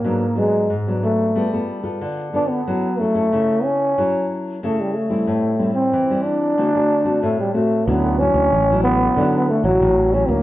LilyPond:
<<
  \new Staff \with { instrumentName = "Nylon-string guitar" } { \time 4/4 \key d \major \tempo 4 = 92 << { <fis b d'>16 r16 <fis b d'>8 r16 <fis b d'>8. <b f' a'>16 <b f' a'>8 <b f' a'>8. <b f' a'>8 | <cis' e' a'>16 r16 <cis' e' a'>16 <cis' e' a'>16 <cis' e' a'>4 <cis' e' a'>4 <cis' e' a'>8 r16 <g c' e'>16~ | <g c' e'>8 <g c' e'>8. <g c' e'>8. <a c' fis'>16 <a c' fis'>8 <a c' fis'>8. <a c' fis'>8 | <fis cis' e'>8 <fis cis' e'>8. <fis cis' e'>8. <fis cis' e'>8 r16 <fis cis' e'>8. <fis cis' e'>8 | } \\ { gis,4 gis,4 g4 d4 | fis4 cis4 fis4 cis4 | a,4 e4 d4 a,4 | d4 a,4 d4 a,4 | } >> }
  \new Staff \with { instrumentName = "Trombone" } { \time 4/4 \key d \major bes8 gis8 r8 a4 r4 d'16 b16~ | b8 a4 cis'4 r8 a16 g16 a8~ | a8. c'8. d'4. a16 g16 a8 | b8 cis'4 b4 a16 fis8. cis'16 bes16 | }
  \new Staff \with { instrumentName = "Fretless electric bass" } { \clef bass \time 4/4 \key d \major r1 | r1 | r1 | d,8. d,16 a,,4 d8. a,,16 a,,8. d,16 | }
>>